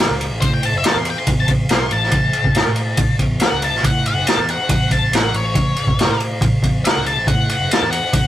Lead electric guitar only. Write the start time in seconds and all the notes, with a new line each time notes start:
0.41 C5
0.54 G5
0.65 A5
0.78 E5
0.88 A5
0.98 C6
1.10 G5
1.18 C6
1.40 A5
1.71 C6
1.92 A5
3.43 F#5
3.64 A5
3.86 F#5
4.08 F#5
4.28 A5
4.51 F#5
4.71 F#5
4.92 A5
5.15 F#5
5.36 C#5
6.85 F#5
7.07 A5
7.28 F#5
7.50 F#5
7.73 A5
7.91 F#5
8.14 F#5